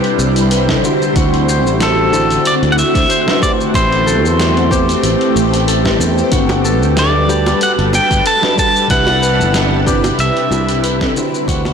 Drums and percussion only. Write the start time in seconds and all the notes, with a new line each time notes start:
0.04 closed hi-hat
0.19 shaker
0.36 closed hi-hat, shaker
0.51 closed hi-hat, shaker
0.69 kick, snare, closed hi-hat
0.84 shaker
1.02 shaker
1.16 kick, closed hi-hat, shaker
1.34 closed hi-hat
1.49 shaker
1.67 shaker
1.80 snare, closed hi-hat, shaker
2.13 shaker
2.31 closed hi-hat, shaker
2.45 closed hi-hat, shaker
2.63 closed hi-hat
2.78 shaker
2.95 kick, closed hi-hat, shaker
3.10 closed hi-hat, shaker
3.28 snare, closed hi-hat
3.42 kick, shaker
3.61 shaker
3.74 kick, closed hi-hat, shaker
3.92 closed hi-hat
4.08 shaker
4.26 shaker
4.39 snare, closed hi-hat, shaker
4.57 closed hi-hat
4.71 kick, shaker
4.89 closed hi-hat, shaker
5.03 closed hi-hat, shaker
5.21 closed hi-hat
5.36 shaker
5.54 closed hi-hat, shaker
5.68 closed hi-hat, shaker
5.85 kick, snare, closed hi-hat
6.01 shaker
6.18 shaker
6.32 kick, closed hi-hat, shaker
6.49 closed hi-hat, high bongo
6.65 shaker
6.83 shaker
6.97 snare, closed hi-hat, shaker
7.30 shaker
7.46 closed hi-hat, high bongo, shaker
7.61 closed hi-hat, shaker
7.79 closed hi-hat
7.93 high bongo, shaker
8.11 kick, closed hi-hat, shaker
8.26 closed hi-hat, shaker
8.43 snare, closed hi-hat
8.58 kick, shaker
8.76 shaker
8.90 kick, closed hi-hat, shaker
9.07 closed hi-hat, high bongo
9.23 shaker
9.41 shaker
9.54 snare, closed hi-hat, shaker
9.87 kick, shaker
10.04 closed hi-hat, high bongo, shaker
10.19 closed hi-hat, shaker
10.37 closed hi-hat
10.52 high bongo, shaker
10.69 closed hi-hat, shaker
10.84 closed hi-hat, shaker
11.01 kick, snare, closed hi-hat
11.17 shaker
11.34 shaker
11.48 kick, closed hi-hat, shaker
11.65 closed hi-hat, high bongo